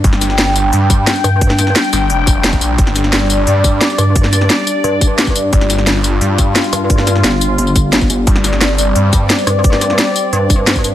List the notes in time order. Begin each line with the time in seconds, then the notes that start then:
Already playing: G3 D4
0.04 G1 G5, kick, closed hi-hat
0.13 snare
0.21 G1, snare, closed hi-hat, tambourine
0.30 snare
0.38 snare, closed hi-hat
0.56 closed hi-hat, tambourine
0.73 G2, closed hi-hat
0.90 kick, closed hi-hat, tambourine
1.07 snare, closed hi-hat
1.16 tambourine
1.24 G2, closed hi-hat, tambourine
1.41 kick, closed hi-hat
1.50 snare
1.59 snare, closed hi-hat, tambourine
1.67 snare
1.76 snare, closed hi-hat
1.84 tambourine
1.93 G1, closed hi-hat, tambourine
2.10 F1, closed hi-hat
2.27 kick, closed hi-hat, tambourine
2.44 snare, closed hi-hat
2.53 kick, tambourine
2.61 A#1, closed hi-hat, tambourine
2.78 G1 D5, kick, closed hi-hat
2.87 snare
2.96 G1, snare, closed hi-hat, tambourine
3.04 snare
3.13 snare, closed hi-hat
3.30 closed hi-hat, tambourine
3.47 G2, closed hi-hat
3.64 kick, closed hi-hat, tambourine
3.81 snare, closed hi-hat
3.90 tambourine
3.98 G2, closed hi-hat, tambourine
4.16 kick, closed hi-hat
4.24 snare
4.33 snare, closed hi-hat, tambourine
4.41 snare
4.50 snare, closed hi-hat
4.67 closed hi-hat, tambourine
4.84 G2, closed hi-hat
5.01 kick, closed hi-hat, tambourine
5.18 snare, closed hi-hat
5.27 kick, tambourine
5.36 closed hi-hat, tambourine
5.53 G1 F4, kick, closed hi-hat
5.61 snare
5.70 G1, snare, closed hi-hat, tambourine
5.78 snare
5.87 snare, closed hi-hat
6.04 closed hi-hat, tambourine
6.21 G2, closed hi-hat
6.38 kick, closed hi-hat, tambourine
6.56 snare, closed hi-hat
6.64 tambourine
6.73 G2, closed hi-hat, tambourine
6.90 kick, closed hi-hat
6.98 snare
7.07 snare, closed hi-hat, tambourine
7.16 snare
7.24 G1, snare, closed hi-hat
7.41 closed hi-hat, tambourine
7.58 G1, closed hi-hat
7.67 tambourine
7.76 kick, closed hi-hat, tambourine
7.93 snare, closed hi-hat
8.01 kick, tambourine
8.10 G1, closed hi-hat, tambourine
8.27 G1 C4 D5, kick, closed hi-hat
8.36 snare
8.44 G1, snare, closed hi-hat, tambourine
8.53 snare
8.61 snare, closed hi-hat
8.78 closed hi-hat, tambourine
8.96 G2, closed hi-hat
9.13 kick, closed hi-hat, tambourine
9.30 snare, closed hi-hat
9.38 tambourine
9.47 G2, closed hi-hat, tambourine
9.64 kick, closed hi-hat
9.73 snare
9.81 snare, closed hi-hat, tambourine
9.90 snare
9.99 snare, closed hi-hat
10.16 closed hi-hat, tambourine
10.33 G2, closed hi-hat
10.50 kick, closed hi-hat, tambourine
10.67 snare, closed hi-hat
10.76 kick, tambourine
10.84 closed hi-hat, tambourine